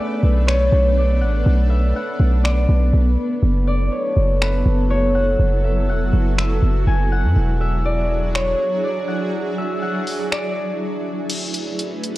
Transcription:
0.00 3.39 A3 medium
0.00 7.32 B3 medium
0.00 3.39 D4 medium
0.00 3.39 B4 medium
0.00 0.53 D5 medium
0.00 1.46 E5 medium
0.00 0.86 F#5 medium
0.00 0.50 G#5 medium
0.23 0.70 B1 loud
0.47 1.03 C#5 medium
0.47 finger snap loud
0.72 1.23 B1 loud
0.97 2.44 D5 medium
1.21 1.45 A1 loud
1.21 1.96 F#5 medium
1.46 1.93 B1 loud
1.70 3.42 E5 medium
1.96 3.57 F#5 medium
2.20 2.67 B1 loud
2.44 3.67 D5 medium
2.44 finger snap loud
2.69 2.93 B1 loud
2.94 3.17 B1 loud
3.43 3.90 F#1 loud
3.43 7.32 F#3 medium
3.43 11.26 E4 medium
3.43 7.32 A4 medium
3.67 3.98 D5 medium
3.92 4.90 C#5 medium
4.17 4.64 F#1 loud
4.41 6.46 B4 medium
4.41 finger snap loud
4.66 5.37 F#1 loud
4.90 6.82 C#5 medium
5.15 5.89 F#5 medium
5.39 5.90 F#1 loud
5.64 6.38 E5 medium
5.89 6.02 E1 loud
5.89 7.11 F#5 medium
6.01 6.13 F#1 loud
6.13 6.61 F#1 medium
6.38 7.60 E5 medium
6.38 finger snap loud
6.62 6.86 F#1 loud
6.87 7.25 F#1 loud
6.87 8.37 G#5 medium
7.12 8.73 F#5 medium
7.24 7.36 F#2 loud
7.36 8.55 E1 loud
7.36 11.26 F#3 medium
7.36 11.26 D4 medium
7.36 11.26 G#4 loud
7.61 9.33 E5 medium
7.85 8.41 D5 medium
8.35 8.90 C#5 medium
8.35 finger snap loud
8.84 10.31 D5 medium
9.08 9.82 F#5 medium
9.58 11.30 E5 medium
9.82 11.43 F#5 medium
10.07 open hi-hat soft
10.31 12.16 D5 medium
10.31 finger snap loud
11.30 12.18 A3 medium
11.30 12.18 C#4 medium
11.30 12.18 G#4 medium
11.30 12.18 B4 loud
11.30 closed hi-hat medium
11.30 crash medium
11.54 closed hi-hat medium
11.79 closed hi-hat medium
12.04 closed hi-hat medium

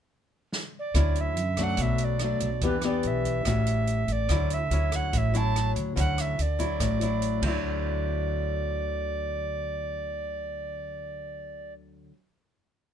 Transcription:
0.52 snare soft
0.79 1.22 D5 medium
0.94 1.37 D2 medium
0.94 1.76 D3 soft
0.94 1.36 F#3 soft
0.94 1.36 C#4 soft
0.94 1.37 E4 medium
0.94 kick medium
0.94 cross-stick medium
0.94 closed hi-hat medium
1.15 closed hi-hat soft
1.21 1.65 E5 medium
1.37 1.76 F#2 medium
1.37 closed hi-hat soft
1.57 2.17 F#3 medium
1.57 2.17 A3 medium
1.57 2.18 D4 medium
1.57 kick soft
1.57 cross-stick medium
1.57 closed hi-hat soft
1.63 1.83 F#5 medium
1.77 2.37 B1 medium
1.77 2.61 B2 medium
1.77 kick medium
1.77 closed hi-hat medium
1.82 2.06 E5 medium
1.98 closed hi-hat soft
2.04 2.64 D5 medium
2.19 2.49 F#3 medium
2.19 2.49 A3 medium
2.19 2.49 D4 soft
2.19 cross-stick medium
2.19 closed hi-hat soft
2.40 2.60 B1 medium
2.40 kick soft
2.40 closed hi-hat soft
2.61 3.05 E2 medium
2.61 3.44 E3 medium
2.61 2.75 B3 medium
2.61 2.75 D4 soft
2.61 2.76 G4 medium
2.61 2.83 B4 medium
2.61 kick medium
2.61 closed hi-hat medium
2.81 3.43 B3 medium
2.81 3.43 D4 medium
2.81 3.43 G4 medium
2.81 cross-stick medium
2.81 closed hi-hat soft
2.87 3.09 D5 medium
3.03 3.43 B1 medium
3.03 closed hi-hat soft
3.07 4.14 E5 medium
3.25 kick soft
3.25 closed hi-hat soft
3.45 4.04 A1 medium
3.45 4.28 A2 medium
3.45 4.02 G3 soft
3.45 4.02 C#4 medium
3.45 4.03 F#4 medium
3.45 kick medium
3.45 cross-stick medium
3.45 closed hi-hat medium
3.66 closed hi-hat soft
3.87 closed hi-hat soft
4.08 4.28 A1 medium
4.08 kick soft
4.08 closed hi-hat soft
4.12 4.55 D5 loud
4.29 4.68 D2 medium
4.29 5.11 D3 medium
4.29 4.57 F#3 medium
4.29 4.57 C#4 medium
4.29 4.57 E4 medium
4.29 kick medium
4.29 cross-stick medium
4.29 closed hi-hat medium
4.50 4.97 E5 medium
4.50 closed hi-hat soft
4.71 5.10 D2 medium
4.71 5.31 F#3 medium
4.71 5.31 C#4 medium
4.71 5.31 E4 medium
4.71 closed hi-hat soft
4.92 5.19 F#5 medium
4.92 kick soft
4.92 cross-stick medium
4.92 closed hi-hat soft
5.13 5.72 A1 medium
5.13 5.95 A2 medium
5.13 kick medium
5.13 closed hi-hat medium
5.17 5.38 E5 medium
5.34 5.93 F#3 medium
5.34 5.94 C#4 medium
5.34 5.94 E4 medium
5.34 5.71 A5 loud
5.34 closed hi-hat soft
5.56 cross-stick medium
5.56 closed hi-hat soft
5.76 5.95 D2 medium
5.76 kick soft
5.76 closed hi-hat soft
5.96 6.36 D2 medium
5.96 6.78 D3 soft
5.96 6.38 F#3 soft
5.96 6.38 C#4 soft
5.96 6.38 E4 medium
5.96 6.22 F#5 medium
5.96 kick medium
5.96 closed hi-hat medium
6.18 6.43 E5 medium
6.18 cross-stick medium
6.18 closed hi-hat soft
6.39 6.78 D2 medium
6.39 7.45 D5 medium
6.39 closed hi-hat soft
6.59 6.98 F#3 medium
6.59 6.98 E4 medium
6.59 kick soft
6.59 closed hi-hat soft
6.80 7.39 A1 medium
6.80 7.43 A2 medium
6.80 kick medium
6.80 cross-stick medium
6.80 closed hi-hat medium
7.01 7.40 F#3 medium
7.01 7.40 E4 medium
7.01 closed hi-hat soft
7.22 closed hi-hat soft
7.42 12.07 D2 medium
7.42 12.11 D3 medium
7.42 12.13 F#3 medium
7.42 7.49 E5 medium
7.42 kick medium
7.42 crash medium
7.48 12.17 E4 medium
7.48 11.73 D5 medium

